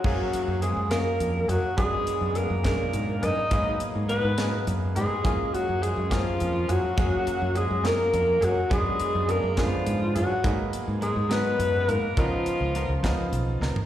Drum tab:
CC |x-----------|------------|------------|------------|
HH |--x-x-x-x-x-|x-x-x-x-x-x-|x-x-x-x-x-x-|x-x-x-x-x-x-|
SD |------o-----|------o-----|------o-----|------o-----|
FT |------------|------------|------------|------------|
BD |o-----------|o-----o-----|o-----------|o-----o-----|

CC |------------|------------|------------|------------|
HH |x-x-x-x-x-x-|x-x-x-x-x-x-|x-x-x-x-x-x-|x-x-x-x-x---|
SD |------o-----|------o-----|------o-----|------o---o-|
FT |------------|------------|------------|-----------o|
BD |o-----------|o-----o-----|o-----------|o-----o-----|